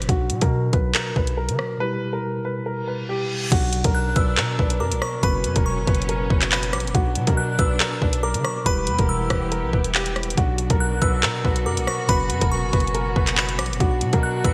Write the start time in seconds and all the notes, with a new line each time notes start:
Already playing: B2 F#3 C#4 F#4
0.02 closed hi-hat
0.07 B1 B2 F#3 D4 F#4, kick, closed hi-hat
0.30 B2, closed hi-hat
0.41 B2 A#4, kick, closed hi-hat
0.73 B1 B4, kick, closed hi-hat
0.95 A#4, clap, closed hi-hat
1.16 B1 B4, kick
1.27 closed hi-hat
1.37 A#4
1.49 D3, closed hi-hat
1.59 cross-stick
1.78 B2 G3 E4 G4 B4
2.13 A#4
2.45 B4
2.66 A#4, reverse cymbal
2.88 B4
3.09 G4
3.50 B1 B2 F#3 B3 D4 F#4, kick, closed hi-hat, crash
3.73 closed hi-hat
3.84 B1 A#4, kick, closed hi-hat
3.95 F#6
4.16 B1 B4 E6, kick, closed hi-hat
4.37 B2 A#4, clap, closed hi-hat
4.59 B1 B4, kick
4.70 closed hi-hat
4.80 F#2 A#4 D6
4.92 B1, closed hi-hat
5.02 C#6, cross-stick
5.21 F#1 B2 F#3 C#4 F#4 B4 B5, kick, closed hi-hat
5.44 F#2, closed hi-hat
5.56 E1 A#4, kick, closed hi-hat
5.66 C#6
5.77 G1
5.87 F#1 B4, kick, closed hi-hat
5.95 closed hi-hat
6.02 closed hi-hat
6.09 A#4, closed hi-hat
6.30 F#1 B4, kick
6.41 clap, closed hi-hat
6.52 B5, clap
6.63 closed hi-hat
6.73 A#1 D6, cross-stick, closed hi-hat
6.80 closed hi-hat
6.85 F#1, closed hi-hat
6.93 B1 B2 F#3 D4 F#4, kick, closed hi-hat
7.15 B2, closed hi-hat
7.27 B2 A#4, kick, closed hi-hat
7.37 F#6
7.59 B1 B4 E6, kick, closed hi-hat
7.80 A#4, clap, closed hi-hat
8.02 B1 B4, kick
8.13 closed hi-hat
8.23 A#4 D6
8.34 D3, closed hi-hat
8.44 C#6, cross-stick
8.64 E1 B2 E3 G3 B3 E4 G4 B4 B5, kick, closed hi-hat
8.87 E2, closed hi-hat
8.99 E1 A#4, kick, closed hi-hat
9.09 E6
9.30 E1 B4, kick, cross-stick, closed hi-hat
9.52 A#4, closed hi-hat
9.63 B1
9.73 E1 B4, kick
9.84 closed hi-hat
9.95 G4, clap
10.06 closed hi-hat
10.16 cross-stick, closed hi-hat
10.23 closed hi-hat
10.30 closed hi-hat
10.36 B1 B2 F#3 B3 D4 F#4, kick, closed hi-hat
10.58 closed hi-hat
10.70 B1 A#4, kick, closed hi-hat
10.80 F#6
11.02 B1 B4 E6, kick, closed hi-hat
11.23 B2 A#4, clap, closed hi-hat
11.45 B1 B4, kick
11.56 closed hi-hat
11.66 F#2 A#4 D6
11.77 B1, closed hi-hat
11.87 C#6, cross-stick
12.07 F#1 B2 F#3 C#4 F#4 B4 B5, kick, closed hi-hat
12.30 F#2, closed hi-hat
12.41 E1 A#4, kick, closed hi-hat
12.52 C#6
12.63 G1
12.73 F#1 B4, kick, closed hi-hat
12.80 closed hi-hat
12.87 closed hi-hat
12.95 A#4, closed hi-hat
13.16 F#1 B4, kick
13.27 clap, closed hi-hat
13.37 B5, clap
13.49 closed hi-hat
13.59 A#1 D6, cross-stick, closed hi-hat
13.66 closed hi-hat
13.70 F#1, closed hi-hat
13.78 B1 B2 F#3 D4 F#4, kick, closed hi-hat
14.01 B2, closed hi-hat
14.13 B2 A#4, kick, closed hi-hat
14.23 F#6
14.44 B1 B4 E6, kick, closed hi-hat